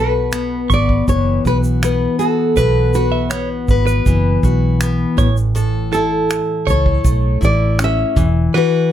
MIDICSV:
0, 0, Header, 1, 6, 480
1, 0, Start_track
1, 0, Tempo, 746269
1, 1652, Time_signature, 4, 2, 24, 8
1, 5738, End_track
2, 0, Start_track
2, 0, Title_t, "Clean electric guitar"
2, 0, Program_c, 0, 27
2, 0, Note_on_c, 0, 69, 70
2, 85, Note_off_c, 0, 69, 0
2, 448, Note_on_c, 0, 85, 73
2, 905, Note_off_c, 0, 85, 0
2, 1653, Note_on_c, 0, 71, 87
2, 1881, Note_off_c, 0, 71, 0
2, 2004, Note_on_c, 0, 76, 69
2, 2122, Note_off_c, 0, 76, 0
2, 2123, Note_on_c, 0, 73, 67
2, 2242, Note_off_c, 0, 73, 0
2, 2486, Note_on_c, 0, 71, 77
2, 2828, Note_off_c, 0, 71, 0
2, 3333, Note_on_c, 0, 73, 78
2, 3447, Note_off_c, 0, 73, 0
2, 3812, Note_on_c, 0, 69, 73
2, 3926, Note_off_c, 0, 69, 0
2, 4289, Note_on_c, 0, 73, 82
2, 4745, Note_off_c, 0, 73, 0
2, 5494, Note_on_c, 0, 71, 85
2, 5721, Note_off_c, 0, 71, 0
2, 5738, End_track
3, 0, Start_track
3, 0, Title_t, "Nylon-string guitar"
3, 0, Program_c, 1, 24
3, 0, Note_on_c, 1, 71, 82
3, 471, Note_off_c, 1, 71, 0
3, 473, Note_on_c, 1, 74, 100
3, 699, Note_off_c, 1, 74, 0
3, 701, Note_on_c, 1, 73, 92
3, 920, Note_off_c, 1, 73, 0
3, 947, Note_on_c, 1, 71, 92
3, 1009, Note_off_c, 1, 71, 0
3, 1184, Note_on_c, 1, 71, 83
3, 1406, Note_off_c, 1, 71, 0
3, 1409, Note_on_c, 1, 69, 85
3, 1895, Note_off_c, 1, 69, 0
3, 1898, Note_on_c, 1, 71, 74
3, 2350, Note_off_c, 1, 71, 0
3, 3823, Note_on_c, 1, 69, 73
3, 4272, Note_off_c, 1, 69, 0
3, 4310, Note_on_c, 1, 73, 95
3, 4786, Note_off_c, 1, 73, 0
3, 4789, Note_on_c, 1, 74, 95
3, 5005, Note_off_c, 1, 74, 0
3, 5043, Note_on_c, 1, 76, 102
3, 5515, Note_on_c, 1, 71, 91
3, 5521, Note_off_c, 1, 76, 0
3, 5738, Note_off_c, 1, 71, 0
3, 5738, End_track
4, 0, Start_track
4, 0, Title_t, "Steel-string acoustic guitar"
4, 0, Program_c, 2, 25
4, 0, Note_on_c, 2, 47, 78
4, 0, Note_on_c, 2, 66, 56
4, 0, Note_on_c, 2, 71, 62
4, 211, Note_on_c, 2, 59, 59
4, 444, Note_off_c, 2, 71, 0
4, 452, Note_on_c, 2, 71, 61
4, 698, Note_on_c, 2, 52, 68
4, 935, Note_off_c, 2, 66, 0
4, 944, Note_on_c, 2, 66, 59
4, 1172, Note_off_c, 2, 59, 0
4, 1181, Note_on_c, 2, 59, 60
4, 1410, Note_off_c, 2, 66, 0
4, 1418, Note_on_c, 2, 66, 54
4, 1649, Note_off_c, 2, 47, 0
4, 1653, Note_off_c, 2, 71, 0
4, 1656, Note_on_c, 2, 47, 74
4, 1660, Note_on_c, 2, 71, 65
4, 1892, Note_off_c, 2, 66, 0
4, 1899, Note_on_c, 2, 66, 59
4, 2134, Note_off_c, 2, 59, 0
4, 2142, Note_on_c, 2, 59, 61
4, 2377, Note_off_c, 2, 71, 0
4, 2384, Note_on_c, 2, 71, 65
4, 2616, Note_off_c, 2, 52, 0
4, 2619, Note_on_c, 2, 52, 68
4, 2852, Note_off_c, 2, 66, 0
4, 2860, Note_on_c, 2, 66, 60
4, 3098, Note_off_c, 2, 59, 0
4, 3107, Note_on_c, 2, 59, 63
4, 3335, Note_off_c, 2, 47, 0
4, 3336, Note_on_c, 2, 45, 81
4, 3385, Note_off_c, 2, 66, 0
4, 3387, Note_off_c, 2, 71, 0
4, 3388, Note_off_c, 2, 59, 0
4, 3561, Note_off_c, 2, 45, 0
4, 3569, Note_on_c, 2, 45, 80
4, 3574, Note_on_c, 2, 69, 68
4, 3811, Note_on_c, 2, 64, 61
4, 4288, Note_off_c, 2, 69, 0
4, 4296, Note_on_c, 2, 69, 65
4, 4528, Note_off_c, 2, 52, 0
4, 4531, Note_on_c, 2, 57, 69
4, 4763, Note_off_c, 2, 64, 0
4, 4765, Note_on_c, 2, 64, 63
4, 5012, Note_on_c, 2, 61, 62
4, 5254, Note_on_c, 2, 52, 77
4, 5297, Note_off_c, 2, 64, 0
4, 5298, Note_off_c, 2, 45, 0
4, 5299, Note_off_c, 2, 57, 0
4, 5300, Note_off_c, 2, 61, 0
4, 5302, Note_off_c, 2, 69, 0
4, 5487, Note_off_c, 2, 52, 0
4, 5495, Note_on_c, 2, 52, 81
4, 5500, Note_on_c, 2, 66, 65
4, 5738, Note_off_c, 2, 52, 0
4, 5738, Note_off_c, 2, 66, 0
4, 5738, End_track
5, 0, Start_track
5, 0, Title_t, "Fingered electric bass"
5, 0, Program_c, 3, 33
5, 0, Note_on_c, 3, 35, 96
5, 426, Note_off_c, 3, 35, 0
5, 451, Note_on_c, 3, 32, 82
5, 648, Note_off_c, 3, 32, 0
5, 693, Note_on_c, 3, 30, 93
5, 889, Note_off_c, 3, 30, 0
5, 932, Note_on_c, 3, 35, 89
5, 1326, Note_off_c, 3, 35, 0
5, 1651, Note_on_c, 3, 35, 93
5, 2346, Note_off_c, 3, 35, 0
5, 2371, Note_on_c, 3, 32, 96
5, 2568, Note_off_c, 3, 32, 0
5, 2612, Note_on_c, 3, 30, 105
5, 2809, Note_off_c, 3, 30, 0
5, 2851, Note_on_c, 3, 35, 88
5, 3246, Note_off_c, 3, 35, 0
5, 3329, Note_on_c, 3, 33, 90
5, 4118, Note_off_c, 3, 33, 0
5, 4291, Note_on_c, 3, 37, 92
5, 4489, Note_off_c, 3, 37, 0
5, 4532, Note_on_c, 3, 35, 101
5, 4729, Note_off_c, 3, 35, 0
5, 4770, Note_on_c, 3, 33, 93
5, 5164, Note_off_c, 3, 33, 0
5, 5252, Note_on_c, 3, 28, 94
5, 5449, Note_off_c, 3, 28, 0
5, 5738, End_track
6, 0, Start_track
6, 0, Title_t, "Drums"
6, 208, Note_on_c, 9, 82, 67
6, 210, Note_on_c, 9, 26, 110
6, 273, Note_off_c, 9, 82, 0
6, 274, Note_off_c, 9, 26, 0
6, 451, Note_on_c, 9, 36, 83
6, 454, Note_on_c, 9, 82, 45
6, 515, Note_off_c, 9, 36, 0
6, 519, Note_off_c, 9, 82, 0
6, 573, Note_on_c, 9, 36, 77
6, 637, Note_off_c, 9, 36, 0
6, 694, Note_on_c, 9, 36, 89
6, 695, Note_on_c, 9, 82, 60
6, 758, Note_off_c, 9, 36, 0
6, 760, Note_off_c, 9, 82, 0
6, 933, Note_on_c, 9, 36, 79
6, 937, Note_on_c, 9, 82, 43
6, 998, Note_off_c, 9, 36, 0
6, 1001, Note_off_c, 9, 82, 0
6, 1052, Note_on_c, 9, 82, 49
6, 1117, Note_off_c, 9, 82, 0
6, 1176, Note_on_c, 9, 26, 103
6, 1179, Note_on_c, 9, 82, 65
6, 1240, Note_off_c, 9, 26, 0
6, 1243, Note_off_c, 9, 82, 0
6, 1413, Note_on_c, 9, 82, 45
6, 1478, Note_off_c, 9, 82, 0
6, 1651, Note_on_c, 9, 82, 70
6, 1652, Note_on_c, 9, 36, 100
6, 1715, Note_off_c, 9, 82, 0
6, 1717, Note_off_c, 9, 36, 0
6, 1891, Note_on_c, 9, 82, 54
6, 1955, Note_off_c, 9, 82, 0
6, 2126, Note_on_c, 9, 82, 68
6, 2128, Note_on_c, 9, 26, 112
6, 2191, Note_off_c, 9, 82, 0
6, 2192, Note_off_c, 9, 26, 0
6, 2369, Note_on_c, 9, 82, 42
6, 2370, Note_on_c, 9, 36, 88
6, 2434, Note_off_c, 9, 36, 0
6, 2434, Note_off_c, 9, 82, 0
6, 2491, Note_on_c, 9, 82, 58
6, 2555, Note_off_c, 9, 82, 0
6, 2612, Note_on_c, 9, 36, 96
6, 2612, Note_on_c, 9, 82, 63
6, 2676, Note_off_c, 9, 36, 0
6, 2676, Note_off_c, 9, 82, 0
6, 2851, Note_on_c, 9, 36, 84
6, 2853, Note_on_c, 9, 82, 41
6, 2916, Note_off_c, 9, 36, 0
6, 2917, Note_off_c, 9, 82, 0
6, 3092, Note_on_c, 9, 26, 94
6, 3095, Note_on_c, 9, 82, 73
6, 3156, Note_off_c, 9, 26, 0
6, 3159, Note_off_c, 9, 82, 0
6, 3332, Note_on_c, 9, 36, 108
6, 3332, Note_on_c, 9, 82, 48
6, 3396, Note_off_c, 9, 36, 0
6, 3397, Note_off_c, 9, 82, 0
6, 3454, Note_on_c, 9, 82, 39
6, 3518, Note_off_c, 9, 82, 0
6, 3574, Note_on_c, 9, 82, 62
6, 3639, Note_off_c, 9, 82, 0
6, 3815, Note_on_c, 9, 82, 54
6, 3880, Note_off_c, 9, 82, 0
6, 4055, Note_on_c, 9, 82, 64
6, 4056, Note_on_c, 9, 26, 114
6, 4119, Note_off_c, 9, 82, 0
6, 4121, Note_off_c, 9, 26, 0
6, 4292, Note_on_c, 9, 36, 90
6, 4298, Note_on_c, 9, 82, 42
6, 4357, Note_off_c, 9, 36, 0
6, 4362, Note_off_c, 9, 82, 0
6, 4412, Note_on_c, 9, 36, 83
6, 4476, Note_off_c, 9, 36, 0
6, 4532, Note_on_c, 9, 36, 98
6, 4535, Note_on_c, 9, 82, 74
6, 4597, Note_off_c, 9, 36, 0
6, 4599, Note_off_c, 9, 82, 0
6, 4772, Note_on_c, 9, 36, 78
6, 4774, Note_on_c, 9, 82, 43
6, 4836, Note_off_c, 9, 36, 0
6, 4839, Note_off_c, 9, 82, 0
6, 5011, Note_on_c, 9, 26, 104
6, 5014, Note_on_c, 9, 82, 74
6, 5075, Note_off_c, 9, 26, 0
6, 5079, Note_off_c, 9, 82, 0
6, 5252, Note_on_c, 9, 36, 103
6, 5254, Note_on_c, 9, 82, 47
6, 5316, Note_off_c, 9, 36, 0
6, 5318, Note_off_c, 9, 82, 0
6, 5738, End_track
0, 0, End_of_file